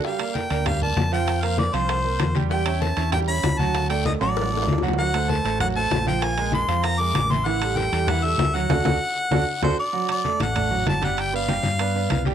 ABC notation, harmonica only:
X:1
M:4/4
L:1/8
Q:1/4=194
K:Dphr
V:1 name="Harmonica"
f2 g2 f a2 g- | g f d c4 z | g2 a2 g =b2 a- | a g e d4 z |
^f2 a2 f a2 g | _a2 c'2 b d'2 c' | ^f2 g2 f =e2 f- | ^f6 c d- |
d d2 ^f3 a f | g f6 z |]